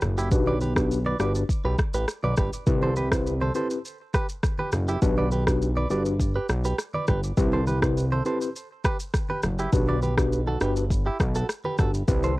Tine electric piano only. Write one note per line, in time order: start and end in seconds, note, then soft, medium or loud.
0.31 0.54 D4 medium
0.31 0.54 F#4 medium
0.31 0.54 G4 medium
0.31 0.54 B4 loud
0.76 0.98 D4 medium
0.76 0.98 F#4 medium
0.76 0.98 G4 medium
0.76 0.98 B4 medium
1.19 1.42 D4 medium
1.19 1.42 F#4 medium
1.19 1.42 G4 medium
1.19 1.42 B4 medium
2.67 2.89 C4 medium
2.67 2.89 E4 medium
2.67 2.89 G4 medium
2.67 2.89 B4 medium
3.11 3.33 C4 medium
3.11 3.33 E4 medium
3.11 3.33 G4 medium
3.11 3.33 B4 medium
3.55 3.77 C4 medium
3.55 3.77 E4 medium
3.55 3.77 G4 medium
3.55 3.78 B4 medium
5.02 5.24 D4 medium
5.02 5.24 F#4 medium
5.02 5.25 G4 medium
5.02 5.25 B4 loud
5.47 5.68 D4 medium
5.47 5.69 F#4 medium
5.47 5.69 G4 medium
5.47 5.69 B4 medium
5.90 6.13 D4 medium
5.90 6.13 F#4 medium
5.90 6.13 G4 medium
5.90 6.13 B4 medium
7.37 7.60 C4 medium
7.37 7.60 E4 medium
7.37 7.60 G4 medium
7.37 7.60 B4 loud
7.82 8.04 C4 medium
7.82 8.04 E4 medium
7.82 8.04 G4 medium
7.82 8.04 B4 medium
8.25 8.48 C4 medium
8.25 8.48 E4 medium
8.25 8.48 G4 medium
8.25 8.48 B4 medium
9.72 9.95 D4 medium
9.72 9.95 F#4 medium
9.72 9.95 G4 medium
9.72 9.95 B4 loud
10.17 10.39 D4 medium
10.17 10.39 F#4 medium
10.17 10.39 G4 medium
10.17 10.39 B4 medium
10.61 10.83 D4 medium
10.61 10.83 F#4 medium
10.61 10.83 G4 medium
10.61 10.83 B4 medium
12.08 12.30 C4 medium
12.08 12.30 E4 medium
12.08 12.30 G4 medium
12.08 12.31 B4 loud